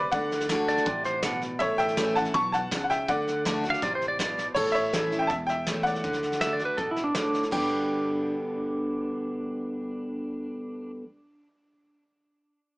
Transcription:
Already playing: steel-string acoustic guitar C3, upright piano B4 D5
0.12 upright bass D2, steel-string acoustic guitar D3, upright piano D5 F#5, kick, snare
0.31 snare
0.40 snare
0.49 steel-string acoustic guitar D3 A3 D4 F#4, kick, snare, hi-hat pedal
0.68 pedal steel guitar D5, snare
0.77 snare
0.86 upright bass A1, steel-string acoustic guitar C3, kick, snare
1.04 pedal steel guitar C5, snare
1.23 steel-string acoustic guitar B2, pedal steel guitar F#5, kick, snare, hi-hat pedal
1.41 snare
1.59 upright bass A1, steel-string acoustic guitar A2, upright piano C#5 E5, kick, snare
1.78 upright piano E5 G5, snare
1.88 snare
1.97 steel-string acoustic guitar E3 A3 C#4 E4, kick, snare, hi-hat pedal
2.15 steel-string acoustic guitar C#4 E4, upright piano F#5 A5, snare
2.25 snare
2.34 upright bass B1, steel-string acoustic guitar B2, upright piano A5 C#6, kick, snare
2.52 upright piano F#5 A5, snare
2.71 upright bass C#2, steel-string acoustic guitar C#3, kick, snare, hi-hat pedal
2.84 upright piano F#5
2.90 upright piano E5 G5, snare
3.08 upright bass D2, steel-string acoustic guitar D3, upright piano D5 F#5, kick, snare
3.27 snare
3.45 steel-string acoustic guitar D3 A3 D4 F#4, kick, snare, hi-hat pedal
3.64 steel-string acoustic guitar D4 F#4, snare
3.70 pedal steel guitar F5, snare
3.82 upright bass A1, steel-string acoustic guitar C3, pedal steel guitar D5, kick, snare
3.95 pedal steel guitar C5
4.01 snare
4.08 pedal steel guitar D5
4.19 steel-string acoustic guitar B2, pedal steel guitar D5, kick, snare, hi-hat pedal
4.38 snare
4.54 upright bass A1, steel-string acoustic guitar A2, upright piano A4 C#5, kick, snare, crash
4.65 snare
4.72 upright piano C#5 E5, snare
4.93 steel-string acoustic guitar E3 A3 C#4 E4, snare, hi-hat pedal
5.12 steel-string acoustic guitar C#4 E4, snare
5.19 upright piano E5 G5
5.27 upright bass E1, upright piano E5 A5, kick, snare
5.47 upright piano E5 G5, snare
5.67 steel-string acoustic guitar E3 A3 C#4 E4, snare, hi-hat pedal
5.83 upright piano D5 F#5, snare
5.95 snare
6.04 upright bass D2, steel-string acoustic guitar D3, kick, snare
6.13 snare
6.23 snare
6.32 snare
6.41 steel-string acoustic guitar D3 A3 D4 F#4, pedal steel guitar E5, snare, hi-hat pedal
6.53 pedal steel guitar D5
6.59 steel-string acoustic guitar D4 F#4, snare
6.65 pedal steel guitar B4
6.77 upright bass A1, steel-string acoustic guitar B2, pedal steel guitar A4, kick, snare
6.91 pedal steel guitar E4
6.96 snare
7.04 pedal steel guitar D4
7.15 steel-string acoustic guitar A2, pedal steel guitar D4, snare, hi-hat pedal
7.34 snare
7.43 snare
7.51 upright bass G1, steel-string acoustic guitar G2 B2 D3 G3 B3 G4, pedal steel guitar D4, upright piano G5, kick, crash

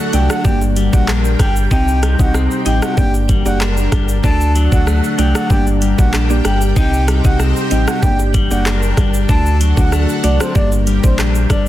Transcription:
Already playing: clean electric guitar D3 F#3 A3 D4, analog synth pad D4 F#4 A4 F#5
0.13 sub bass C2, clean electric guitar F#3, synth pluck A3 D4 F#4 D5, soft synth lead G5, closed hi-hat, shaker
0.30 soft synth lead F#5, cross-stick, shaker
0.45 sub bass G1, clean electric guitar G2, synth pluck A#3 D4 G4 D5, analog synth pad G4 A#4 G5, soft synth lead G5, kick, high bongo, shaker
0.61 high bongo, shaker
0.76 clean electric guitar G3, closed hi-hat, shaker
0.93 sub bass A#1, synth pluck A#3 D4 G4 D5, soft synth lead F#5, kick, high bongo, shaker
1.08 clean electric guitar D4, cross-stick, clap, shaker
1.25 shaker
1.39 sub bass G1, clean electric guitar G3, soft synth lead G5, kick, cross-stick, closed hi-hat, high bongo, low bongo, shaker
1.56 shaker
1.71 sub bass C2, clean electric guitar C3 D#4, synth pluck C4 D#4 G4 D#5, analog synth pad D#4 C5, soft synth lead G5, kick, shaker
1.88 shaker
2.03 clean electric guitar G3, cross-stick, closed hi-hat, shaker
2.19 sub bass C2, synth pluck C4 D#4 G4 D#5, soft synth lead F#5, kick, shaker
2.34 clean electric guitar C4, cross-stick, shaker
2.51 shaker
2.66 sub bass A1, clean electric guitar G3, synth pluck C4 D#4 G4 D#5, soft synth lead G5, closed hi-hat, shaker
2.82 soft synth lead F#5, cross-stick, shaker
2.97 sub bass G1, synth pluck A#3 D4 G4 D5, analog synth pad D4 A#4, soft synth lead G5, kick, high bongo, shaker
3.14 high bongo, shaker
3.29 clean electric guitar G3, kick, closed hi-hat, shaker
3.45 sub bass F#1, synth pluck A#3 D4 G4 D5, soft synth lead F#5, high bongo, shaker
3.61 clean electric guitar D4, cross-stick, clap, shaker
3.77 shaker
3.92 sub bass G1, clean electric guitar G3, kick, cross-stick, closed hi-hat, high bongo, low bongo, shaker
4.09 shaker
4.23 sub bass D2, clean electric guitar D3 D4, synth pluck A3 D4 F#4 D5, analog synth pad F#4 A4 F#5, soft synth lead A5, kick, shaker
4.41 shaker
4.55 clean electric guitar F#3, closed hi-hat, shaker
4.72 sub bass D2, synth pluck A3 D4 F#4 D5, soft synth lead F#5, kick, shaker
4.87 clean electric guitar A3, cross-stick, shaker
5.04 shaker
5.18 sub bass C2, clean electric guitar F#3, synth pluck A3 D4 F#4 D5, soft synth lead G5, closed hi-hat, shaker
5.35 soft synth lead F#5, cross-stick, shaker
5.50 sub bass G1, clean electric guitar G2, synth pluck A#3 D4 G4 D5, analog synth pad G4 A#4 G5, soft synth lead G5, kick, high bongo, shaker
5.67 high bongo, shaker
5.82 clean electric guitar G3, closed hi-hat, shaker
5.98 sub bass A#1, synth pluck A#3 D4 G4 D5, soft synth lead F#5, kick, high bongo, shaker
6.13 clean electric guitar D4, cross-stick, clap, shaker
6.30 synth pluck A#3 D4 G4 D5, shaker
6.45 sub bass G1, clean electric guitar G3, soft synth lead G5, cross-stick, closed hi-hat, high bongo, low bongo, shaker
6.61 shaker
6.76 sub bass C2, clean electric guitar C3 D#4, synth pluck C4 D#4 G4 D#5, analog synth pad D#4 C5, soft synth lead G5, kick, shaker
6.93 shaker
7.08 clean electric guitar G3, cross-stick, closed hi-hat, shaker
7.24 sub bass C2, synth pluck C4 D#4 G4 D#5, soft synth lead F#5, kick, shaker
7.40 clean electric guitar C4, cross-stick, shaker
7.56 shaker
7.71 sub bass A1, clean electric guitar G3, synth pluck C4 D#4 G4 D#5, soft synth lead G5, closed hi-hat, shaker
7.88 soft synth lead F#5, cross-stick, shaker
8.02 sub bass G1, synth pluck A#3 D4 G4 D5, analog synth pad D4 A#4, soft synth lead G5, kick, high bongo, shaker
8.19 high bongo, shaker
8.34 clean electric guitar G3, kick, closed hi-hat, shaker
8.51 sub bass F#1, synth pluck A#3 D4 G4 D5, soft synth lead F#5, high bongo, shaker
8.66 clean electric guitar D4, cross-stick, clap, shaker
8.83 shaker
8.97 sub bass G1, clean electric guitar G3, kick, cross-stick, closed hi-hat, high bongo, low bongo, shaker
9.14 shaker
9.29 sub bass D2, clean electric guitar D3 D4, synth pluck A3 D4 F#4 D5, analog synth pad F#4 A4 F#5, soft synth lead A5, kick, shaker
9.46 shaker
9.61 clean electric guitar F#3, closed hi-hat, shaker
9.77 sub bass D2, synth pluck A3 D4 F#4 D5, soft synth lead F#5, kick, shaker
9.92 clean electric guitar A3, cross-stick, shaker
10.09 shaker
10.23 sub bass C2, clean electric guitar F#3, synth pluck A3 D4 F#4 D5, soft synth lead D5, closed hi-hat, shaker
10.40 soft synth lead C5, cross-stick, shaker
10.55 sub bass G1, clean electric guitar G2, synth pluck A#3 D4 G4 D5, analog synth pad G4 A#4 G5, soft synth lead D5, kick, high bongo, shaker
10.72 high bongo, shaker
10.87 clean electric guitar G3, closed hi-hat, shaker
11.03 sub bass A#1, synth pluck A#3 D4 G4 D5, soft synth lead C5, kick, high bongo, shaker
11.18 clean electric guitar D4, cross-stick, clap, shaker
11.35 shaker
11.50 sub bass G1, clean electric guitar G3, soft synth lead D5, kick, cross-stick, closed hi-hat, high bongo, low bongo, shaker

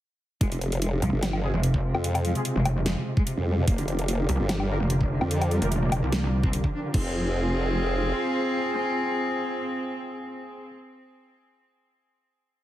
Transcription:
0.41 wobble bass F1, cello G#3, supersaw synth G#3 C4 F4, kick, closed hi-hat
0.52 cello C3, closed hi-hat
0.61 cello C3, closed hi-hat
0.72 cello C3, closed hi-hat
0.82 cello G#3, closed hi-hat
0.93 cello C3
1.02 wobble bass C2, cello F3, closed hi-hat
1.13 wobble bass G1, cello C3
1.23 cello C3, snare, closed hi-hat, low woodblock
1.33 cello F3, low woodblock
1.43 cello C3, brass ensemble C4 F4 G#4
1.54 wobble bass F1, cello G#3
1.63 cello C3, closed hi-hat
1.74 cello C3, kick
1.84 cello C3
1.94 wobble bass F2, low woodblock
2.04 cello C3, closed hi-hat
2.15 cello C3, closed hi-hat, low woodblock
2.25 cello F3, closed hi-hat
2.35 cello C3, brass ensemble C4 F4 G#4, closed hi-hat
2.45 cello C3, closed hi-hat
2.56 wobble bass F1, cello G#3
2.65 cello C3, closed hi-hat, low woodblock
2.76 cello C3
2.86 cello G#3, snare, closed hi-hat
2.97 cello C3
3.06 cello C3
3.17 cello G#3, kick
3.27 cello C3, closed hi-hat
3.37 wobble bass F2, cello C3
3.47 cello G3
3.58 cello C3
3.67 wobble bass F1, supersaw synth F3 F4 G4 A#4 D5, cello A#3, kick, closed hi-hat
3.78 cello D3, closed hi-hat
3.88 cello D3, closed hi-hat
3.98 cello D3, closed hi-hat
4.08 cello A#3, closed hi-hat
4.19 cello D3
4.29 wobble bass C2, cello G3, closed hi-hat
4.39 wobble bass G1, cello D3
4.49 cello D3, snare, closed hi-hat, low woodblock
4.60 cello G3, low woodblock
4.70 cello D3, brass ensemble D4 G4 A#4
4.80 wobble bass F1, cello A#3
4.90 cello D3, closed hi-hat
5.01 cello D3, kick
5.10 cello D3
5.21 wobble bass F2, low woodblock
5.31 cello D3, closed hi-hat
5.41 cello D3, closed hi-hat, low woodblock
5.51 cello G3, closed hi-hat
5.62 wobble bass F1, cello D3, brass ensemble D4 G4 A#4, closed hi-hat
5.72 cello D3, closed hi-hat
5.82 cello A#3
5.92 cello D3, closed hi-hat, low woodblock
6.03 wobble bass C2, cello D3
6.12 cello A#3, snare, closed hi-hat
6.23 cello D3
6.33 cello D3
6.43 cello C4, kick
6.53 cello D3, closed hi-hat
6.64 cello D3, kick
6.74 cello D4
6.84 cello D3
6.94 wobble bass F1, cello C4, brass ensemble C4 F4 G#4, supersaw synth C4 F4 G#4, kick, crash

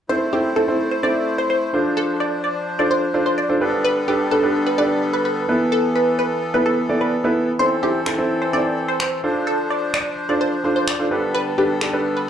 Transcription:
0.09 accordion A3 E4 C5, grand piano C4 E4 A4 C5, synth pluck C5
0.33 grand piano C4 E4 A4 C5, synth pluck G4
0.56 grand piano C4 E4 A4 C5, synth pluck A4
0.68 grand piano C4 E4 A4 C5
0.91 synth pluck C5
1.03 grand piano C4 E4 A4 C5, synth pluck D5
1.38 synth pluck C5
1.50 synth pluck C5
1.73 accordion F3 D4, grand piano D4 F4 A4 C5
1.97 synth pluck A4
2.20 synth pluck D5
2.44 synth pluck D5
2.79 grand piano D4 F4 A4 C5, synth pluck D5
2.91 synth pluck C5
3.14 grand piano D4 F4 A4 C5
3.26 synth pluck C5
3.38 synth pluck D5
3.49 grand piano D4 F4 A4 C5
3.61 accordion D3 G3 B3 A4, grand piano D4 G4 A4 B4
3.85 synth pluck B4
4.08 grand piano D4 G4 A4 B4, synth pluck G4
4.31 grand piano D4 G4 A4 B4, synth pluck A4
4.43 grand piano D4 G4 A4 B4
4.67 synth pluck B4
4.78 grand piano D4 G4 A4 B4, synth pluck D5
5.13 synth pluck B4
5.25 synth pluck B4
5.48 accordion E3 B3, grand piano B3 E4 A4 B4
5.72 synth pluck A4
5.95 synth pluck B4
6.19 synth pluck B4
6.54 grand piano B3 E4 A4 B4, synth pluck B4
6.66 synth pluck A4
6.89 grand piano B3 E4 A4 D5
7.01 synth pluck B4
7.24 grand piano B3 E4 A4 B4
7.59 accordion E3 C4 A4, grand piano C4 E4 A4 C5, synth pluck C5
7.83 grand piano C4 E4 A4 C5, synth pluck G4
8.06 grand piano C4 E4 A4 C5, synth pluck A4, finger snap
8.18 grand piano C4 E4 A4 C5
8.42 synth pluck C5
8.53 grand piano C4 E4 A4 C5, synth pluck D5
8.88 synth pluck C5
9.00 synth pluck C5, finger snap
9.23 accordion F3 D4 C5, grand piano D4 F4 A4 C5
9.47 synth pluck A4
9.70 synth pluck D5
9.94 synth pluck D5, finger snap
10.29 grand piano D4 F4 A4 C5, synth pluck D5
10.41 synth pluck C5
10.64 grand piano D4 F4 A4 C5
10.76 synth pluck C5
10.88 synth pluck D5, finger snap
10.99 grand piano D4 F4 A4 C5
11.11 accordion D3 G3 B3 A4, grand piano D4 G4 A4 B4
11.34 synth pluck B4
11.58 grand piano D4 G4 A4 B4, synth pluck G4
11.81 grand piano D4 G4 A4 D5, synth pluck A4, finger snap
11.93 grand piano D4 G4 A4 B4
12.17 synth pluck B4

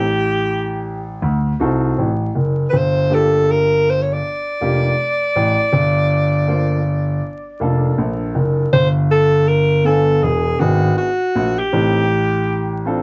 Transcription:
Already playing: grand piano A1, alto saxophone G4
1.22 grand piano D2
1.60 grand piano C2, upright piano C4 D#4 F#4 A4
1.98 grand piano A1
2.35 grand piano F#1
2.70 grand piano G1, alto saxophone B4
2.77 alto saxophone C5
3.10 upright piano A#3 D4 F4 G4
3.15 alto saxophone A4
3.51 alto saxophone A#4
3.90 alto saxophone C5
4.02 alto saxophone C#5
4.13 alto saxophone D5
4.61 grand piano F1, upright piano A#3 D4 F4 G4
5.36 grand piano A1
5.73 grand piano G1
6.48 upright piano A#3 D4 F4 C5
7.60 grand piano F1, upright piano A#3 D4 F4 A4
7.98 grand piano A#1
8.35 grand piano F#1
8.73 grand piano G1, alto saxophone C5
9.11 alto saxophone A4
9.48 alto saxophone A#4
9.85 upright piano B3 D4 F5 G#5, alto saxophone A4
10.23 grand piano E1, alto saxophone G#4
10.59 grand piano G#1, upright piano B3 D4 E4 G#4, alto saxophone F#4
10.98 alto saxophone F#4
11.35 grand piano A#1
11.59 alto saxophone G4
11.72 grand piano A1, upright piano C4 D#4 G4 A4
12.85 upright piano C4 D4 F4 A4

